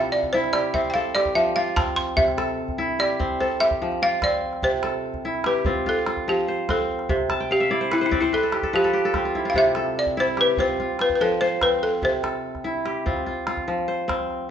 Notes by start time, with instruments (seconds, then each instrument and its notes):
Already playing: kora C3 C4 E4 F4 G4 A4, balafon E5
0.12 balafon D5
0.23 calabash thump
0.33 kora E4, balafon C5
0.44 calabash click
0.53 kora G4, balafon D5, calabash click
0.65 calabash click
0.74 kora C4, balafon E5, calabash thump
0.90 balafon F5 G5
0.95 kora A4
1.15 kora G4, balafon D5, calabash click
1.25 calabash thump
1.35 kora F3, balafon E5
1.56 kora F4, balafon F5
1.76 kora C4, balafon A5, calabash thump, calabash click
1.96 balafon C6
2.07 calabash click
2.17 kora C3, balafon E5, calabash thump
2.28 calabash click
2.38 kora A4, calabash click
2.68 calabash thump
2.78 kora E4, calabash click
2.99 kora G4, balafon D5, calabash click
3.20 kora C4, calabash thump
3.41 kora A4, balafon C5
3.60 kora G4, balafon E5, calabash click
3.71 calabash thump
3.82 kora F3
3.92 calabash click
4.02 kora F4, balafon F5
4.22 kora C4, balafon D5, calabash thump, calabash click
4.53 calabash click
4.63 kora C3, balafon C5, calabash thump
4.83 kora A4, calabash click
5.14 calabash thump
5.25 kora E4
5.35 calabash click
5.44 kora G4, balafon B4, calabash click
5.55 calabash click
5.65 kora C4 F4, calabash thump
5.86 kora F4, balafon A4
6.06 kora F4, calabash click
6.17 calabash thump
6.28 kora F3, balafon G4
6.48 kora C5
6.69 kora C4, balafon A4, calabash thump, calabash click
6.99 calabash click
7.09 kora C3, calabash thump
7.30 kora A5, calabash click
7.40 kora G5
7.51 balafon G4, kora F5
7.60 kora E5
7.71 kora E4 D5
7.81 kora C5, calabash click
7.91 balafon E4, kora B4, calabash click
8.01 kora C5, calabash click
8.06 balafon E4
8.11 kora C4 D5, calabash thump
8.21 balafon E4, kora C5
8.33 balafon A4, kora B4
8.43 kora A4
8.52 kora G4, calabash click
8.63 kora A4, calabash thump
8.73 kora F3 B4, balafon G4
8.84 kora A4
8.93 kora G4
9.05 kora A4
9.14 kora C4 G4, calabash thump, calabash click
9.25 kora F4
9.35 kora E4
9.45 kora F4, calabash click
9.50 balafon F5
9.54 kora C3, balafon E5, calabash thump
9.75 kora A4, calabash click
9.99 balafon D5
10.06 calabash thump
10.17 kora E4, balafon C5
10.27 calabash click
10.37 kora G4, balafon B4, calabash click
10.47 calabash click
10.57 kora C4 F4, balafon C5, calabash thump
10.80 kora F4
10.99 kora F4, balafon B4, calabash click
11.10 calabash thump
11.16 balafon B4
11.21 kora F3, balafon A4
11.41 balafon C5, kora C5
11.61 kora C4, balafon B4, calabash thump, calabash click
11.83 balafon A4
11.92 calabash click
12.02 kora C3, balafon C5, calabash thump, calabash click
12.13 calabash click
12.23 kora A4, calabash click
12.55 calabash thump, calabash click
12.64 kora E4
12.85 kora G4, calabash click
13.06 kora C4 F4, calabash thump
13.17 calabash click
13.26 kora F4
13.47 kora F4, calabash click
13.57 calabash thump
13.68 kora F3, calabash click
13.78 calabash click
13.88 kora C5, calabash click
14.08 kora C4, calabash thump, calabash click
14.30 calabash click